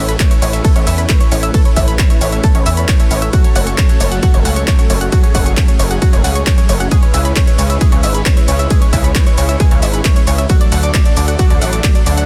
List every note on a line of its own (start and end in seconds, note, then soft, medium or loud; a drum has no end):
0.00 0.16 A1 loud
0.00 6.87 A3 medium
0.00 10.46 C#4 medium
0.00 3.30 E4 medium
0.00 3.30 B4 medium
0.00 6.87 C#5 medium
0.09 0.16 B5 medium
0.09 closed hi-hat medium
0.09 shaker soft
0.20 0.27 C#5 medium
0.20 kick loud
0.20 clap loud
0.20 closed hi-hat medium
0.20 ride medium
0.20 shaker soft
0.31 0.38 C#5 medium
0.31 closed hi-hat medium
0.31 shaker soft
0.42 0.61 A1 loud
0.42 0.53 C#5 medium
0.42 open hi-hat loud
0.42 shaker medium
0.53 0.60 E5 medium
0.53 closed hi-hat medium
0.53 shaker soft
0.64 0.72 A4 loud
0.64 kick loud
0.64 closed hi-hat medium
0.64 ride medium
0.64 shaker soft
0.76 0.85 A1 loud
0.76 0.80 C#5 medium
0.76 closed hi-hat medium
0.87 1.06 E2 medium
0.87 0.91 E5 loud
0.87 open hi-hat loud
0.87 shaker medium
0.98 1.05 B5 medium
0.98 closed hi-hat medium
0.98 shaker soft
1.09 1.16 C#5 medium
1.09 kick loud
1.09 clap loud
1.09 closed hi-hat medium
1.09 ride medium
1.09 shaker soft
1.21 1.28 C#5 medium
1.21 closed hi-hat medium
1.21 shaker soft
1.32 1.50 A1 loud
1.32 1.42 C#5 medium
1.32 open hi-hat loud
1.32 shaker medium
1.43 1.50 E5 medium
1.43 closed hi-hat medium
1.43 shaker soft
1.54 1.61 A4 loud
1.54 kick loud
1.54 closed hi-hat medium
1.54 ride medium
1.54 shaker soft
1.65 1.70 C#5 medium
1.65 closed hi-hat medium
1.76 1.95 A1 loud
1.76 1.81 E5 loud
1.76 kick medium
1.76 open hi-hat loud
1.76 shaker medium
1.88 1.95 B5 medium
1.88 closed hi-hat medium
1.88 shaker soft
1.99 2.06 C#5 medium
1.99 kick loud
1.99 clap loud
1.99 closed hi-hat medium
1.99 ride medium
1.99 shaker soft
2.10 2.17 C#5 medium
2.10 closed hi-hat medium
2.10 shaker soft
2.21 2.40 A1 medium
2.21 2.32 C#5 medium
2.21 open hi-hat loud
2.21 shaker medium
2.32 2.40 E5 medium
2.32 closed hi-hat medium
2.32 shaker soft
2.44 2.51 A4 loud
2.44 kick loud
2.44 closed hi-hat medium
2.44 ride medium
2.44 shaker soft
2.55 2.64 A1 loud
2.55 2.59 C#5 medium
2.55 closed hi-hat medium
2.66 2.85 E2 medium
2.66 2.70 E5 loud
2.66 open hi-hat loud
2.66 shaker medium
2.77 2.84 B5 medium
2.77 closed hi-hat medium
2.77 shaker soft
2.88 2.96 C#5 medium
2.88 kick loud
2.88 clap loud
2.88 closed hi-hat medium
2.88 ride medium
2.88 shaker soft
3.00 3.07 C#5 medium
3.00 closed hi-hat medium
3.00 shaker soft
3.11 3.30 A1 loud
3.11 3.21 C#5 medium
3.11 open hi-hat loud
3.11 shaker medium
3.22 3.29 E5 medium
3.22 closed hi-hat medium
3.22 shaker soft
3.33 6.88 F#3 medium
3.33 3.40 F#4 loud
3.33 5.11 A4 medium
3.33 kick loud
3.33 closed hi-hat medium
3.33 ride medium
3.33 shaker soft
3.44 3.49 C#5 medium
3.44 closed hi-hat medium
3.56 3.74 F#1 loud
3.56 3.60 F#5 loud
3.56 open hi-hat loud
3.56 shaker medium
3.67 3.74 C#6 medium
3.67 closed hi-hat medium
3.67 shaker soft
3.78 3.85 C#5 medium
3.78 kick loud
3.78 clap loud
3.78 closed hi-hat medium
3.78 ride medium
3.78 shaker soft
3.89 3.96 C#5 medium
3.89 closed hi-hat medium
3.89 shaker soft
4.00 4.19 F#1 medium
4.00 4.11 C#5 medium
4.00 open hi-hat loud
4.00 shaker medium
4.12 4.19 F#5 medium
4.12 closed hi-hat medium
4.12 shaker soft
4.23 4.30 F#4 loud
4.23 kick loud
4.23 closed hi-hat medium
4.23 ride medium
4.23 shaker soft
4.34 4.43 F#1 loud
4.34 4.38 C#5 medium
4.34 closed hi-hat medium
4.45 4.64 C#2 medium
4.45 4.49 F#5 loud
4.45 open hi-hat loud
4.45 shaker medium
4.56 4.63 C#6 medium
4.56 closed hi-hat medium
4.56 shaker soft
4.67 4.75 C#5 medium
4.67 kick loud
4.67 clap loud
4.67 closed hi-hat medium
4.67 ride medium
4.67 shaker soft
4.79 4.86 C#5 medium
4.79 closed hi-hat medium
4.79 shaker soft
4.90 5.09 F#1 loud
4.90 5.01 C#5 medium
4.90 open hi-hat loud
4.90 shaker medium
5.01 5.08 F#5 medium
5.01 closed hi-hat medium
5.01 shaker soft
5.12 5.19 F#4 loud
5.12 6.90 G#4 medium
5.12 kick loud
5.12 closed hi-hat medium
5.12 ride medium
5.12 shaker soft
5.23 5.28 C#5 medium
5.23 closed hi-hat medium
5.35 5.54 F#1 loud
5.35 5.39 F#5 loud
5.35 kick medium
5.35 open hi-hat loud
5.35 shaker medium
5.46 5.53 C#6 medium
5.46 closed hi-hat medium
5.46 shaker soft
5.57 5.64 C#5 medium
5.57 kick loud
5.57 clap loud
5.57 closed hi-hat medium
5.57 ride medium
5.57 shaker soft
5.68 5.75 C#5 medium
5.68 closed hi-hat medium
5.68 shaker soft
5.79 5.98 F#1 loud
5.79 5.90 C#5 medium
5.79 open hi-hat loud
5.79 shaker medium
5.91 5.98 F#5 medium
5.91 closed hi-hat medium
5.91 shaker soft
6.02 6.09 F#4 loud
6.02 kick loud
6.02 closed hi-hat medium
6.02 ride medium
6.02 shaker soft
6.13 6.23 F#1 loud
6.13 6.17 C#5 medium
6.13 closed hi-hat medium
6.13 shaker soft
6.24 6.43 C#2 medium
6.24 6.29 F#5 loud
6.24 open hi-hat loud
6.24 shaker medium
6.35 6.43 C#6 medium
6.35 closed hi-hat medium
6.35 shaker soft
6.47 6.54 C#5 medium
6.47 kick loud
6.47 clap loud
6.47 closed hi-hat medium
6.47 ride medium
6.47 shaker soft
6.58 6.65 C#5 medium
6.58 closed hi-hat medium
6.58 shaker soft
6.69 6.88 F#1 medium
6.69 6.80 C#5 medium
6.69 open hi-hat loud
6.69 shaker medium
6.80 6.87 F#5 medium
6.80 closed hi-hat medium
6.80 shaker soft
6.91 10.46 G#3 medium
6.91 10.46 E4 medium
6.91 6.99 G#4 loud
6.91 10.46 B4 medium
6.91 10.46 C#5 medium
6.91 kick loud
6.91 closed hi-hat medium
6.91 ride medium
6.91 shaker soft
7.03 7.07 C#5 medium
7.03 closed hi-hat medium
7.14 7.33 C#2 loud
7.14 7.18 E5 loud
7.14 open hi-hat loud
7.14 shaker medium
7.25 7.32 B5 medium
7.25 closed hi-hat medium
7.25 shaker soft
7.36 7.43 C#5 medium
7.36 kick loud
7.36 clap loud
7.36 closed hi-hat medium
7.36 ride medium
7.36 shaker soft
7.47 7.55 C#5 medium
7.47 closed hi-hat medium
7.47 shaker soft
7.58 7.77 C#2 medium
7.58 7.69 C#5 medium
7.58 open hi-hat loud
7.58 shaker medium
7.70 7.77 E5 medium
7.70 closed hi-hat medium
7.70 shaker soft
7.81 7.88 G#4 loud
7.81 kick loud
7.81 closed hi-hat medium
7.81 ride medium
7.81 shaker soft
7.92 8.02 C#2 loud
7.92 7.96 C#5 medium
7.92 closed hi-hat medium
8.03 8.22 G#1 medium
8.03 8.08 E5 loud
8.03 open hi-hat loud
8.03 shaker medium
8.14 8.22 B5 medium
8.14 closed hi-hat medium
8.14 shaker soft
8.26 8.33 C#5 medium
8.26 kick loud
8.26 clap loud
8.26 closed hi-hat medium
8.26 ride medium
8.26 shaker soft
8.37 8.44 C#5 medium
8.37 closed hi-hat medium
8.37 shaker soft
8.48 8.67 C#2 medium
8.48 8.59 C#5 medium
8.48 open hi-hat loud
8.48 shaker medium
8.59 8.66 E5 medium
8.59 closed hi-hat medium
8.59 shaker soft
8.70 8.78 G#4 loud
8.70 kick loud
8.70 closed hi-hat medium
8.70 ride medium
8.70 shaker soft
8.82 8.86 C#5 medium
8.82 closed hi-hat medium
8.93 9.12 C#2 loud
8.93 8.97 E5 loud
8.93 kick medium
8.93 open hi-hat loud
8.93 shaker medium
9.04 9.11 B5 medium
9.04 closed hi-hat medium
9.04 shaker soft
9.15 9.22 C#5 medium
9.15 kick loud
9.15 clap loud
9.15 closed hi-hat medium
9.15 ride medium
9.15 shaker soft
9.26 9.34 C#5 medium
9.26 closed hi-hat medium
9.26 shaker soft
9.38 9.57 C#2 loud
9.38 9.48 C#5 medium
9.38 open hi-hat loud
9.38 shaker medium
9.49 9.56 E5 medium
9.49 closed hi-hat medium
9.49 shaker soft
9.60 9.67 G#4 loud
9.60 kick loud
9.60 closed hi-hat medium
9.60 ride medium
9.60 shaker soft
9.71 9.81 C#2 loud
9.71 9.75 C#5 medium
9.71 closed hi-hat medium
9.82 10.01 G#1 medium
9.82 9.87 E5 loud
9.82 open hi-hat loud
9.82 shaker medium
9.94 10.01 B5 medium
9.94 closed hi-hat medium
9.94 shaker soft
10.05 10.12 C#5 medium
10.05 kick loud
10.05 clap loud
10.05 closed hi-hat medium
10.05 ride medium
10.05 shaker soft
10.16 10.23 C#5 medium
10.16 closed hi-hat medium
10.16 shaker soft
10.27 10.46 C#2 loud
10.27 10.38 C#5 medium
10.27 open hi-hat loud
10.27 shaker medium
10.38 10.46 E5 medium
10.38 closed hi-hat medium
10.38 shaker soft
10.49 12.26 F#3 medium
10.49 12.26 A3 medium
10.49 12.26 D4 medium
10.49 10.57 F#4 loud
10.49 12.26 A4 medium
10.49 12.26 D5 medium
10.49 kick loud
10.49 closed hi-hat medium
10.49 ride medium
10.49 shaker soft
10.61 10.65 D5 medium
10.61 closed hi-hat medium
10.72 10.91 D2 loud
10.72 10.76 F#5 loud
10.72 open hi-hat loud
10.72 shaker medium
10.83 10.90 D6 medium
10.83 closed hi-hat medium
10.83 shaker soft
10.94 11.02 D5 medium
10.94 kick loud
10.94 clap loud
10.94 closed hi-hat medium
10.94 ride medium
10.94 shaker soft
11.05 11.13 D5 medium
11.05 closed hi-hat medium
11.05 shaker soft
11.17 11.36 D2 medium
11.17 11.27 D5 medium
11.17 open hi-hat loud
11.17 shaker medium
11.28 11.35 F#5 medium
11.28 closed hi-hat medium
11.28 shaker soft
11.39 11.46 F#4 loud
11.39 kick loud
11.39 closed hi-hat medium
11.39 ride medium
11.39 shaker soft
11.50 11.60 D2 loud
11.50 11.55 D5 medium
11.50 closed hi-hat medium
11.61 11.80 A1 loud
11.61 11.66 F#5 loud
11.61 open hi-hat loud
11.61 shaker medium
11.73 11.80 D6 medium
11.73 closed hi-hat medium
11.73 shaker soft
11.84 11.91 D5 medium
11.84 kick loud
11.84 clap loud
11.84 closed hi-hat medium
11.84 ride medium
11.84 shaker soft
11.95 12.02 D5 medium
11.95 closed hi-hat medium
11.95 shaker soft
12.06 12.25 D2 loud
12.06 12.17 D5 medium
12.06 open hi-hat loud
12.06 shaker medium
12.17 12.25 F#5 medium
12.17 closed hi-hat medium
12.17 shaker soft